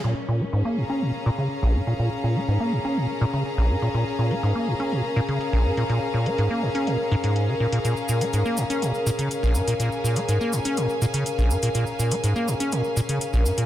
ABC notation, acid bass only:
X:1
M:4/4
L:1/16
Q:1/4=123
K:Bbm
V:1 name="Acid bass" clef=bass
B,, z B,, B, A,, B, A,, D B,, z B,, D, z B,,, A,, B,, | B,, z B,, B, A,, B, A,, D B,, z B,, D, z B,,, A,, B,, | B,, z B,, B, A,, B, A,, D B,, z B,, D, z B,,, A,, B,, | B,, z B,, B, A,, B, A,, D B,, z A,, A,,2 D, B,, B,, |
B,, z B,, B, A,, B, A,, D B,, z B,, D, z B,,, A,, B,, | B,, z B,, B, A,, B, A,, D B,, z B,, D, z B,,, A,, B,, | B,, z B,, B, A,, B, A,, D B,, z B,, D, z B,,, A,, B,, |]